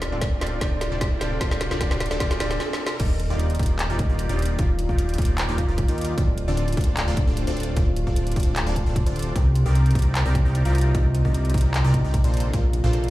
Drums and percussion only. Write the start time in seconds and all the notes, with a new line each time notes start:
0.02 snare, closed hi-hat
0.21 kick, snare, closed hi-hat
0.41 snare, closed hi-hat
0.47 closed hi-hat
0.61 kick, snare, closed hi-hat
0.81 snare, closed hi-hat
1.01 kick, snare, closed hi-hat
1.21 snare, closed hi-hat
1.41 kick, snare, closed hi-hat
1.51 snare
1.61 snare, closed hi-hat
1.71 snare
1.81 kick, snare, closed hi-hat
1.91 snare
2.00 snare, closed hi-hat
2.06 closed hi-hat
2.11 snare
2.20 kick, snare, closed hi-hat
2.31 snare
2.40 snare, closed hi-hat
2.51 snare
2.60 snare
2.73 snare
2.87 snare
3.00 kick, closed hi-hat, crash
3.20 closed hi-hat
3.39 closed hi-hat
3.50 closed hi-hat
3.55 closed hi-hat
3.59 kick, closed hi-hat
3.63 closed hi-hat
3.66 closed hi-hat
3.79 clap, closed hi-hat
3.99 kick, closed hi-hat
4.19 closed hi-hat
4.29 closed hi-hat
4.39 closed hi-hat
4.42 closed hi-hat
4.45 closed hi-hat
4.59 kick, closed hi-hat
4.79 closed hi-hat
4.89 kick
4.99 closed hi-hat
5.09 closed hi-hat
5.14 closed hi-hat
5.18 kick, closed hi-hat
5.22 closed hi-hat
5.25 closed hi-hat
5.38 clap, closed hi-hat
5.58 kick, closed hi-hat
5.78 kick, closed hi-hat
5.88 closed hi-hat
5.98 closed hi-hat
6.01 closed hi-hat
6.05 closed hi-hat
6.18 kick, closed hi-hat
6.38 closed hi-hat
6.57 closed hi-hat
6.68 closed hi-hat
6.73 closed hi-hat
6.77 kick, closed hi-hat
6.81 closed hi-hat
6.84 closed hi-hat
6.97 clap, closed hi-hat
7.17 kick, closed hi-hat
7.37 closed hi-hat
7.47 closed hi-hat
7.57 closed hi-hat
7.60 closed hi-hat
7.63 closed hi-hat
7.77 kick, closed hi-hat
7.96 closed hi-hat
8.07 kick
8.16 closed hi-hat
8.27 closed hi-hat
8.32 closed hi-hat
8.36 kick, closed hi-hat
8.40 closed hi-hat
8.43 closed hi-hat
8.56 clap, closed hi-hat
8.76 kick, closed hi-hat
8.96 kick, closed hi-hat
9.07 closed hi-hat
9.16 closed hi-hat
9.19 closed hi-hat
9.22 closed hi-hat
9.36 kick, closed hi-hat
9.55 closed hi-hat
9.75 closed hi-hat
9.86 closed hi-hat
9.91 closed hi-hat
9.95 kick, closed hi-hat
9.99 closed hi-hat
10.02 closed hi-hat
10.15 clap, closed hi-hat
10.35 kick, closed hi-hat
10.55 closed hi-hat
10.65 closed hi-hat
10.75 closed hi-hat
10.78 closed hi-hat
10.81 closed hi-hat
10.95 kick, closed hi-hat
11.15 closed hi-hat
11.25 kick
11.34 closed hi-hat
11.45 closed hi-hat
11.50 closed hi-hat
11.54 kick, closed hi-hat
11.58 closed hi-hat
11.61 closed hi-hat
11.74 clap, closed hi-hat
11.94 kick, closed hi-hat
12.14 kick, closed hi-hat
12.24 closed hi-hat
12.34 closed hi-hat
12.37 closed hi-hat
12.40 closed hi-hat
12.53 kick, closed hi-hat
12.73 closed hi-hat
12.93 closed hi-hat
13.04 closed hi-hat